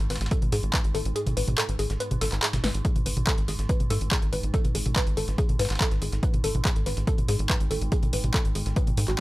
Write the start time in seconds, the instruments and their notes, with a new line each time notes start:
Already playing: synth drone G#2
0.10 analog synth bass G#1, synth arpeggio sound B4, snare, closed hi-hat, open hi-hat
0.16 snare, closed hi-hat
0.21 analog synth bass G#1, snare, closed hi-hat
0.26 snare, closed hi-hat
0.31 synth arpeggio sound A4, kick, closed hi-hat
0.42 analog synth bass G#1, closed hi-hat, mid tom
0.52 analog synth bass G#2, synth arpeggio sound G#4, snare, closed hi-hat, open hi-hat
0.63 analog synth bass G#1, closed hi-hat
0.73 synth arpeggio sound B4, kick, snare, clap, closed hi-hat
0.84 analog synth bass G#1, closed hi-hat
0.95 analog synth bass G#1, synth arpeggio sound A4, closed hi-hat, open hi-hat
1.05 analog synth bass G#1, closed hi-hat
1.16 synth arpeggio sound G#4, closed hi-hat
1.26 analog synth bass G#1, closed hi-hat, mid tom
1.37 analog synth bass G#1, synth arpeggio sound B4, closed hi-hat, open hi-hat
1.48 analog synth bass A1, closed hi-hat, mid tom
1.58 synth arpeggio sound A4, snare, clap, closed hi-hat
1.69 analog synth bass G#1, closed hi-hat
1.79 analog synth bass G#1, synth arpeggio sound G#4, closed hi-hat, open hi-hat
1.90 analog synth bass G#1, snare, closed hi-hat
2.00 synth arpeggio sound B4, closed hi-hat
2.11 analog synth bass G#1, closed hi-hat, mid tom
2.21 analog synth bass G#1, synth arpeggio sound A4, snare, closed hi-hat, open hi-hat
2.32 analog synth bass G#1, snare, clap, closed hi-hat
2.42 synth arpeggio sound G#4, snare, clap, closed hi-hat
2.53 analog synth bass G#1, snare, closed hi-hat, mid tom
2.64 analog synth bass G#1, synth arpeggio sound B4, snare, closed hi-hat, open hi-hat
2.74 analog synth bass G#1, closed hi-hat
2.85 synth drone G#2, synth arpeggio sound G#4, kick, closed hi-hat
2.96 analog synth bass G#1, closed hi-hat, mid tom
3.06 analog synth bass G#1, synth arpeggio sound B4, closed hi-hat, open hi-hat
3.17 analog synth bass A1, closed hi-hat, mid tom
3.27 synth arpeggio sound A4, kick, snare, clap, closed hi-hat
3.38 analog synth bass G#1, closed hi-hat
3.48 analog synth bass G#1, synth arpeggio sound G#4, snare, closed hi-hat, open hi-hat
3.59 analog synth bass G#1, snare, closed hi-hat
3.69 synth arpeggio sound B4, kick, closed hi-hat
3.80 analog synth bass G#1, closed hi-hat, mid tom
3.90 analog synth bass G#2, synth arpeggio sound A4, snare, closed hi-hat, open hi-hat
4.01 analog synth bass G#1, closed hi-hat
4.11 synth arpeggio sound G#4, kick, snare, clap, closed hi-hat
4.22 analog synth bass G#1, closed hi-hat
4.33 analog synth bass G#1, synth arpeggio sound B4, closed hi-hat, open hi-hat
4.43 analog synth bass G#1, closed hi-hat
4.54 synth arpeggio sound A4, kick, closed hi-hat
4.65 analog synth bass G#1, closed hi-hat, mid tom
4.75 analog synth bass G#1, synth arpeggio sound G#4, closed hi-hat, open hi-hat
4.86 analog synth bass A1, closed hi-hat, mid tom
4.96 synth arpeggio sound B4, kick, snare, clap, closed hi-hat
5.07 analog synth bass G#1, closed hi-hat
5.17 analog synth bass G#1, synth arpeggio sound A4, closed hi-hat, open hi-hat
5.28 analog synth bass G#1, snare, closed hi-hat
5.38 synth arpeggio sound G#4, kick, closed hi-hat
5.49 analog synth bass G#1, closed hi-hat, mid tom
5.59 analog synth bass G#2, synth arpeggio sound B4, snare, closed hi-hat, open hi-hat
5.65 snare, closed hi-hat
5.70 analog synth bass G#1, snare, clap, closed hi-hat
5.75 snare, closed hi-hat
5.81 synth arpeggio sound A4, kick, snare, clap, closed hi-hat
5.91 analog synth bass G#1, snare, closed hi-hat
6.02 analog synth bass G#1, synth arpeggio sound G#4, closed hi-hat, open hi-hat
6.12 analog synth bass G#1, snare, closed hi-hat
6.23 synth arpeggio sound B4, kick, closed hi-hat
6.34 analog synth bass G#1, closed hi-hat, mid tom
6.44 analog synth bass G#1, synth arpeggio sound A4, closed hi-hat, open hi-hat
6.55 analog synth bass A1, closed hi-hat, mid tom
6.65 synth arpeggio sound G#4, kick, snare, clap, closed hi-hat
6.76 analog synth bass G#1, closed hi-hat
6.86 analog synth bass G#1, synth arpeggio sound B4, snare, closed hi-hat, open hi-hat
6.97 analog synth bass G#1, snare, closed hi-hat
7.07 synth arpeggio sound A4, kick, closed hi-hat
7.18 analog synth bass G#1, closed hi-hat, mid tom
7.28 analog synth bass G#2, synth arpeggio sound G#4, snare, closed hi-hat, open hi-hat
7.39 analog synth bass G#1, closed hi-hat
7.50 synth arpeggio sound B4, kick, snare, clap, closed hi-hat
7.60 analog synth bass G#1, closed hi-hat
7.71 analog synth bass G#1, synth arpeggio sound A4, closed hi-hat, open hi-hat
7.81 analog synth bass G#1, closed hi-hat
7.92 synth arpeggio sound G#4, kick, closed hi-hat
8.03 analog synth bass G#1, closed hi-hat, mid tom
8.13 analog synth bass G#1, synth arpeggio sound B4, closed hi-hat, open hi-hat
8.24 analog synth bass A1, closed hi-hat, mid tom
8.34 synth arpeggio sound A4, kick, snare, clap, closed hi-hat
8.45 analog synth bass G#1, closed hi-hat
8.55 analog synth bass G#1, synth arpeggio sound G#4, closed hi-hat, open hi-hat
8.66 analog synth bass G#1, snare, closed hi-hat
8.76 synth arpeggio sound B4, kick, closed hi-hat
8.87 analog synth bass G#1, closed hi-hat, mid tom
8.97 analog synth bass G#2, synth arpeggio sound A4, closed hi-hat, open hi-hat
9.08 analog synth bass G#1, synth arpeggio sound F#4, clap